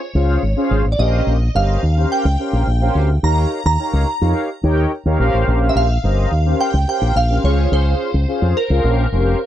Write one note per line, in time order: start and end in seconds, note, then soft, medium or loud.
0.00 0.67 C#5 medium
0.15 0.36 C#2 loud
0.15 0.43 C#4 medium
0.15 0.43 F4 medium
0.15 0.43 G#4 medium
0.15 0.43 C5 medium
0.15 0.43 F5 medium
0.43 0.53 G#1 medium
0.56 0.85 C#4 medium
0.56 0.85 F4 medium
0.56 0.85 G#4 medium
0.56 0.85 C5 medium
0.56 0.85 F5 loud
0.71 0.82 G#1 medium
0.85 0.95 A1 medium
0.92 0.99 D5 medium
0.98 1.20 A#1 loud
0.98 1.36 C#4 medium
0.98 1.36 G4 medium
0.98 1.37 A#4 medium
0.98 1.37 C5 medium
0.98 1.57 D#5 medium
0.98 1.37 F5 medium
1.27 1.48 A#1 loud
1.55 1.76 G1 loud
1.55 1.83 C#4 medium
1.55 1.83 G4 medium
1.55 1.83 A#4 medium
1.55 1.83 C5 medium
1.55 1.83 D#5 medium
1.55 2.13 F5 loud
1.83 2.04 D#2 loud
1.97 2.25 C#4 medium
1.97 2.25 G4 medium
1.97 2.25 A#4 medium
1.97 2.25 C5 medium
1.97 2.25 F5 medium
2.12 2.92 G5 loud
2.25 2.36 C#2 loud
2.39 2.67 C#4 medium
2.39 2.67 G4 medium
2.39 2.67 A#4 medium
2.39 2.67 C5 medium
2.39 2.68 F5 medium
2.53 2.64 A#1 medium
2.67 2.88 A#1 loud
2.81 3.09 C#4 medium
2.81 3.09 G4 medium
2.81 3.09 A#4 medium
2.81 3.09 C5 medium
2.81 3.09 F5 loud
2.95 3.16 D2 medium
3.23 3.45 D#2 loud
3.23 3.60 D#4 medium
3.23 3.61 G4 medium
3.23 3.61 A#4 medium
3.23 3.61 C#5 medium
3.23 3.61 F5 medium
3.23 3.65 A#5 loud
3.65 3.76 D#2 loud
3.65 4.18 A#5 loud
3.79 4.07 D#4 medium
3.79 4.07 G4 medium
3.79 4.07 A#4 medium
3.79 4.08 C#5 medium
3.79 4.08 F5 medium
3.93 4.04 C#2 medium
4.21 4.32 F2 loud
4.21 4.49 D#4 medium
4.21 4.49 G4 medium
4.21 4.49 A#4 medium
4.21 4.49 C#5 medium
4.21 4.50 F5 medium
4.63 4.85 D#2 loud
4.63 4.91 D#4 loud
4.63 4.92 G4 medium
4.63 4.92 A#4 medium
4.63 4.92 C#5 medium
4.63 4.92 G5 loud
5.05 5.16 D#2 medium
5.05 5.19 D#4 medium
5.05 5.18 G4 medium
5.05 5.18 A#4 medium
5.05 5.20 C#5 medium
5.05 5.19 F5 loud
5.19 5.30 A#1 loud
5.19 5.87 C#4 loud
5.19 5.87 G4 loud
5.19 5.87 A#4 loud
5.19 5.87 C5 medium
5.19 5.87 F5 loud
5.33 5.44 A1 medium
5.47 5.69 A#1 loud
5.69 5.76 E5 medium
5.75 5.97 A#1 loud
5.75 6.63 F5 loud
6.03 6.25 G1 loud
6.03 6.32 C#4 medium
6.03 6.32 G4 medium
6.03 6.32 A#4 medium
6.03 6.32 C5 medium
6.03 6.32 D#5 medium
6.31 6.53 D#2 loud
6.45 6.74 C#4 medium
6.45 6.74 G4 medium
6.45 6.74 A#4 medium
6.45 6.74 C5 medium
6.45 6.74 F5 medium
6.61 6.73 G5 loud
6.74 6.84 C#2 medium
6.87 7.16 C#4 medium
6.87 7.16 G4 medium
6.87 7.16 A#4 medium
6.87 7.16 C5 medium
6.87 7.16 F5 medium
6.87 7.17 G5 loud
7.01 7.12 A#1 medium
7.16 7.37 A#1 medium
7.16 7.42 F5 loud
7.29 7.42 C#4 medium
7.29 7.44 G4 medium
7.29 7.44 A#4 medium
7.29 7.43 C5 medium
7.29 7.43 F5 medium
7.44 7.65 C#2 loud
7.44 8.11 C#4 medium
7.44 8.11 F4 medium
7.44 8.11 G#4 medium
7.44 8.11 C5 medium
7.44 7.73 C#5 loud
7.44 8.11 F5 loud
7.72 7.93 C#2 loud
7.72 8.59 C5 medium
8.14 8.25 C#2 loud
8.28 8.56 C#4 medium
8.28 8.56 F4 medium
8.28 8.56 G#4 medium
8.28 8.56 C5 medium
8.28 8.56 F5 medium
8.42 8.53 F2 medium
8.57 9.37 A#4 medium
8.70 8.81 C#2 loud
8.70 8.83 C#4 medium
8.70 8.84 F4 medium
8.70 8.84 G#4 medium
8.70 8.83 C5 medium
8.70 8.83 F5 medium
8.84 9.05 A#1 loud
8.84 9.06 C#4 medium
8.84 9.06 G4 medium
8.84 9.06 A#4 medium
8.84 9.07 C5 medium
8.84 9.07 F5 medium
9.12 9.33 F1 medium
9.12 9.40 C#4 medium
9.12 9.40 G4 medium
9.12 9.40 A#4 medium
9.12 9.41 C5 medium
9.12 9.41 F5 medium